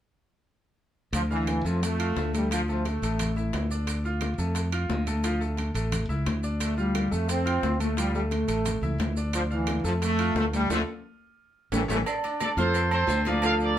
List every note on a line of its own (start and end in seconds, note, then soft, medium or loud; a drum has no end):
1.13 1.61 D2 loud
1.13 1.22 F3 loud
1.13 high bongo medium
1.13 high timbale medium
1.13 maracas medium
1.30 1.63 E3 loud
1.30 1.59 D4 medium
1.30 1.59 F5 medium
1.30 1.59 F6 medium
1.30 high bongo soft
1.30 maracas soft
1.47 high bongo medium
1.47 high conga medium
1.47 high timbale medium
1.47 maracas soft
1.65 2.13 F2 medium
1.65 1.83 F3 loud
1.65 1.93 A3 medium
1.65 1.93 A4 medium
1.65 1.94 A5 medium
1.65 high bongo soft
1.65 high conga soft
1.65 maracas medium
1.82 2.34 A3 loud
1.82 high bongo medium
1.82 high conga soft
1.82 high timbale medium
1.82 maracas medium
1.99 2.27 F4 medium
1.99 2.28 F5 medium
1.99 2.28 F6 medium
1.99 high timbale medium
1.99 maracas soft
2.16 2.96 D2 medium
2.16 high bongo medium
2.16 low bongo medium
2.16 high conga medium
2.16 maracas soft
2.33 2.51 G3 medium
2.33 2.48 A3 medium
2.33 2.48 A4 medium
2.33 2.48 A5 medium
2.33 high bongo soft
2.33 high conga medium
2.33 high timbale medium
2.33 maracas medium
2.51 2.65 F3 medium
2.51 2.60 F3 loud
2.51 2.66 F4 medium
2.51 2.65 F5 medium
2.51 high bongo medium
2.51 high timbale loud
2.51 maracas medium
2.68 2.85 F3 medium
2.68 2.97 A3 medium
2.68 2.97 A4 medium
2.68 2.97 A5 medium
2.68 high bongo soft
2.68 maracas soft
2.85 3.54 A3 medium
2.85 high bongo medium
2.85 high conga medium
2.85 high timbale medium
2.85 maracas soft
3.02 3.50 A1 medium
3.02 3.31 A3 medium
3.02 3.31 A4 medium
3.02 3.31 A5 medium
3.02 high timbale medium
3.02 maracas medium
3.19 high bongo medium
3.19 high conga soft
3.19 low conga medium
3.19 high timbale medium
3.19 maracas medium
3.36 3.64 E4 medium
3.36 3.65 E5 medium
3.36 3.65 E6 medium
3.36 high bongo soft
3.36 maracas soft
3.53 4.33 D2 medium
3.53 high bongo medium
3.53 low bongo medium
3.53 high conga medium
3.53 high timbale medium
3.53 low timbale medium
3.53 maracas soft
3.70 3.99 D4 medium
3.70 3.99 D5 medium
3.70 3.99 D6 medium
3.70 high bongo soft
3.70 maracas medium
3.87 high bongo medium
3.87 high timbale medium
3.87 maracas medium
4.04 4.33 F4 medium
4.04 4.33 F5 medium
4.04 4.33 F6 medium
4.04 high bongo soft
4.04 high conga soft
4.04 maracas soft
4.21 high bongo medium
4.21 high conga medium
4.21 high timbale medium
4.21 maracas soft
4.38 4.86 F2 medium
4.38 4.66 A3 medium
4.38 4.67 A4 medium
4.38 4.67 A5 medium
4.38 high bongo soft
4.38 maracas medium
4.55 high bongo medium
4.55 high conga soft
4.55 high timbale medium
4.55 maracas medium
4.72 5.00 F4 medium
4.72 5.01 F5 medium
4.72 5.01 F6 medium
4.72 high conga soft
4.72 high timbale medium
4.72 maracas soft
4.89 5.69 D2 medium
4.89 high bongo medium
4.89 low bongo medium
4.89 high conga medium
4.89 low timbale medium
4.89 maracas soft
5.07 5.21 A3 medium
5.07 5.21 A4 medium
5.07 5.21 A5 medium
5.07 high bongo soft
5.07 high conga medium
5.07 high timbale medium
5.07 maracas medium
5.24 5.38 F3 medium
5.24 5.38 F4 medium
5.24 5.39 F5 medium
5.24 high bongo medium
5.24 high timbale medium
5.24 maracas loud
5.41 5.69 A3 medium
5.41 5.69 A4 medium
5.41 5.69 A5 medium
5.41 high bongo soft
5.41 high conga soft
5.41 maracas soft
5.57 high bongo medium
5.57 high conga medium
5.57 high timbale medium
5.57 maracas soft
5.74 6.07 A1 medium
5.74 6.03 A3 medium
5.74 6.03 A4 medium
5.74 6.03 A5 medium
5.74 high timbale medium
5.74 maracas medium
5.92 high bongo medium
5.92 high conga soft
5.92 low conga medium
5.92 high timbale medium
5.92 maracas medium
6.09 6.25 C#2 medium
6.09 6.37 E4 medium
6.09 6.37 E5 medium
6.09 6.38 E6 medium
6.09 high bongo soft
6.09 high conga soft
6.09 maracas soft
6.26 7.06 D2 medium
6.26 high bongo medium
6.26 low bongo medium
6.26 high conga medium
6.26 high timbale medium
6.26 maracas soft
6.43 6.71 D4 medium
6.43 6.72 D5 medium
6.43 6.72 D6 medium
6.43 high bongo soft
6.43 maracas medium
6.60 6.77 A3 medium
6.60 high bongo medium
6.60 high conga soft
6.60 high timbale loud
6.60 maracas medium
6.77 7.09 G3 medium
6.77 7.05 F4 medium
6.77 7.06 F5 medium
6.77 7.06 F6 medium
6.77 high bongo soft
6.77 maracas soft
6.95 high bongo medium
6.95 high conga medium
6.95 high timbale loud
6.95 maracas soft
7.11 7.59 F2 medium
7.11 7.39 A3 medium
7.11 7.29 A3 loud
7.11 7.40 A4 medium
7.11 7.40 A5 medium
7.11 high bongo soft
7.11 maracas medium
7.29 7.80 C4 loud
7.29 high bongo medium
7.29 high conga soft
7.29 high timbale medium
7.29 maracas medium
7.45 7.74 F4 medium
7.45 7.74 F5 medium
7.45 7.74 F6 medium
7.45 high conga soft
7.45 high timbale medium
7.45 maracas soft
7.63 8.43 D2 medium
7.63 high bongo medium
7.63 low bongo medium
7.63 high conga medium
7.63 low timbale medium
7.63 maracas soft
7.80 7.94 A3 medium
7.80 7.96 A3 medium
7.80 7.94 A4 medium
7.80 7.94 A5 medium
7.80 high bongo soft
7.80 high conga medium
7.80 high timbale medium
7.80 maracas medium
7.97 8.11 F3 medium
7.97 8.13 G3 loud
7.97 8.11 F4 medium
7.97 8.11 F5 medium
7.97 high bongo medium
7.97 high timbale medium
7.97 maracas medium
8.14 8.23 G3 medium
8.14 8.42 A3 medium
8.14 8.43 A4 medium
8.14 8.43 A5 medium
8.14 high bongo soft
8.14 high conga soft
8.14 maracas soft
8.31 8.96 A3 medium
8.31 high bongo medium
8.31 high conga medium
8.31 high timbale medium
8.31 maracas soft
8.48 8.80 A1 medium
8.48 8.76 A3 medium
8.48 8.76 A4 medium
8.48 8.76 A5 medium
8.48 high timbale medium
8.48 maracas medium
8.66 high bongo medium
8.66 high conga soft
8.66 low conga medium
8.66 high timbale medium
8.66 maracas medium
8.81 8.98 C#2 medium
8.81 9.11 E4 medium
8.81 9.11 E5 medium
8.81 9.11 E6 medium
8.81 high bongo soft
8.81 high conga soft
8.81 low conga medium
8.81 maracas soft
8.98 9.79 D2 medium
8.98 high bongo medium
8.98 low bongo medium
8.98 high conga medium
8.98 high timbale medium
8.98 low timbale medium
8.98 maracas soft
9.17 9.45 D4 medium
9.17 9.45 D5 medium
9.17 9.45 D6 medium
9.17 high bongo soft
9.17 high conga soft
9.17 maracas medium
9.33 9.42 F3 loud
9.33 high bongo medium
9.33 high timbale loud
9.33 maracas loud
9.50 9.83 E3 medium
9.50 9.79 D4 medium
9.50 9.79 F5 medium
9.50 9.79 F6 medium
9.50 high bongo soft
9.50 high conga soft
9.50 maracas soft
9.67 high bongo medium
9.67 high conga loud
9.67 high timbale loud
9.67 maracas soft
9.84 10.32 F2 medium
9.84 9.94 F3 loud
9.84 10.13 A3 medium
9.84 10.13 A4 medium
9.84 10.13 A5 medium
9.84 high bongo soft
9.84 maracas medium
10.02 10.34 A3 loud
10.02 high bongo medium
10.02 high conga soft
10.02 high timbale medium
10.02 maracas loud
10.19 10.47 F4 medium
10.19 10.47 F5 medium
10.19 10.48 F6 medium
10.19 high timbale medium
10.19 maracas soft
10.35 10.67 D2 medium
10.35 10.45 A3 loud
10.35 high bongo medium
10.35 low bongo medium
10.35 high conga medium
10.35 low timbale medium
10.35 maracas soft
10.53 10.70 G3 loud
10.53 10.67 A3 medium
10.53 10.67 A4 medium
10.53 10.67 A5 medium
10.53 high bongo soft
10.53 high conga medium
10.53 high timbale medium
10.53 maracas medium
10.70 10.82 D2 medium
10.70 10.79 D3 loud
10.70 10.79 F3 loud
10.70 10.79 A3 loud
10.70 10.81 F4 loud
10.70 10.81 A4 loud
10.70 10.81 D5 loud
10.70 high bongo loud
10.70 high conga loud
10.70 high timbale loud
10.70 maracas loud
11.72 11.85 A1 medium
11.72 11.82 E3 medium
11.72 11.81 G3 medium
11.72 11.81 A3 medium
11.72 11.83 G4 medium
11.72 11.83 A4 medium
11.72 11.83 C#5 medium
11.72 high bongo loud
11.72 high conga loud
11.72 high timbale loud
11.72 maracas loud
11.88 12.02 A1 medium
11.88 11.98 E3 loud
11.88 11.98 G3 medium
11.88 11.98 A3 medium
11.88 12.00 G4 medium
11.88 12.00 A4 medium
11.88 12.00 C#5 loud
11.88 high bongo loud
11.88 high conga loud
11.88 high timbale medium
11.88 maracas medium
12.06 12.42 D5 medium
12.06 cowbell loud
12.06 low agogo loud
12.06 maracas medium
12.24 12.52 D4 medium
12.24 12.52 D5 medium
12.24 12.52 D6 medium
12.24 high conga soft
12.24 low agogo medium
12.24 maracas soft
12.40 12.50 A4 medium
12.40 12.50 D5 medium
12.40 cowbell medium
12.40 high conga loud
12.40 low timbale medium
12.40 low agogo loud
12.40 maracas medium
12.57 13.05 F2 medium
12.57 12.85 F4 medium
12.57 12.94 A4 medium
12.57 12.90 A4 medium
12.57 12.90 C5 loud
12.57 12.86 F5 medium
12.57 12.86 F6 medium
12.57 cowbell medium
12.57 high conga loud
12.57 maracas soft
12.74 cowbell loud
12.74 low agogo medium
12.74 maracas medium
12.91 13.20 C4 medium
12.91 13.25 A4 medium
12.91 13.20 C5 medium
12.91 13.24 C5 medium
12.91 13.20 C6 medium
12.91 high conga soft
12.91 low agogo loud
12.91 maracas soft
13.07 13.79 D2 medium
13.07 13.33 C5 medium
13.07 cowbell medium
13.07 low timbale medium
13.07 maracas medium
13.25 13.40 F3 medium
13.25 13.40 F4 medium
13.25 13.44 A#4 medium
13.25 13.44 D5 medium
13.25 13.41 F5 loud
13.25 cowbell medium
13.25 high conga medium
13.25 low agogo medium
13.25 maracas soft
13.42 13.71 F3 medium
13.42 13.71 F4 medium
13.42 13.79 A4 medium
13.42 13.71 F5 medium
13.42 13.53 F5 loud
13.42 cowbell medium
13.42 high conga soft
13.42 low agogo loud
13.42 maracas medium
13.47 13.53 D5 medium
13.60 13.79 A#4 medium
13.60 13.79 D5 loud
13.60 maracas soft